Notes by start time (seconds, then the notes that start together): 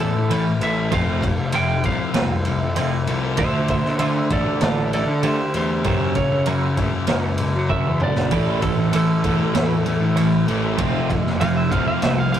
Already playing: E2
0.00 A2 E3 A4, muted clean electric guitar stroke
0.15 A2
0.30 A2 E3 A3 C#4 E4, ride
0.61 A1 A2 E3 A3 E5, ride
0.91 F1 F2 C3 F3 A3 C4 F4 F5, kick, ride
1.07 F3 A3 C4 F4
1.23 F2 C3, kick, ride
1.38 F1
1.52 F2 C3 F3 A3 C4 F4 G5, ride
1.84 C2 F2 C3 F3 F5, kick, ride
2.14 C2 F2 C3 F3 A3 C4 F4, snare, ride
2.45 F2 C3, muted clean electric guitar stroke, ride
2.63 F2
2.76 F2 C3 F3 A3 C4 F4, ride
3.07 C2 F2 C3 F3, ride
3.37 D2 D3 A3 D4 F4 C5 E5, kick, ride
3.41 A3 D4
3.53 D3 A3 D4 F4
3.68 D3 A3 C5 E5, kick, ride
3.85 D2, snare
3.99 D3 A3 D4 F4 C5 E5, ride
4.30 A1 D3 A3 D4 A4 D5, kick, ride
4.61 A1 D3 A3 D4 F4 A4 D5, snare, ride
4.92 D3 A3 A4 D5, muted clean electric guitar stroke, ride
5.07 D3
5.23 D3 A3 D4 F4 G4 C5, ride
5.54 E2 D3 A3 D4 G4 C5, ride
5.84 F#2 C#3 F#3 A#3 C#4 F#4 G4 C5, kick, ride
6.00 F#3 A#3 C#4 F#4
6.15 F#2 C#3 C#5, kick, ride
6.32 F#2
6.46 F#2 C#3 F#3 A#3 C#4 F#4, ride
6.77 C#2 F#2 C#3 F#3, kick, ride
7.07 C#2 F#2 C#3 F#3 A#3 C#4 F#4, snare, ride
7.38 C#3, muted clean electric guitar stroke, ride
7.42 F#2
7.55 F#3
7.69 F#2 F#3 A#3 C#4 F#4 E5, kick
7.74 F#2 C#3
7.87 E2
8.00 C#2 F#2 C#3 F#3 D5, mid tom
8.16 A#1, snare
8.31 A1 A2 E3 A3 C#4 E4, kick, ride
8.47 E3 A3 C#4 E4
8.62 A2 E3 A4, kick, ride
8.77 A1
8.93 A2 E3 A3 C#4 E4 A4, ride
9.24 E2 A2 E3 A3, kick, ride
9.53 E2 A2 E3 A3 C#4 E4, snare, ride
9.85 A2 E3, muted clean electric guitar stroke, ride
10.01 A2
10.16 A2 E3 A3 C#4 E4, ride
10.47 A1 A2 E3 A3, ride
10.78 F1 F2 C3 F3 A3 C4 F4, kick, ride
10.93 F3 A3 C4 F4
11.10 F2 C3 F3 A3, kick, ride
11.25 F1, snare
11.40 F2 C3 F3 A3 C4 F4 F5, ride
11.57 E5
11.71 C2 F2 C3 F3 A3 C4 F5, kick, ride
11.88 F5
12.02 C2 F2 C3 F3 A3 C4 F4 E5, snare, ride
12.18 F5
12.32 F2 C3 F3 A3 F5, muted clean electric guitar stroke, ride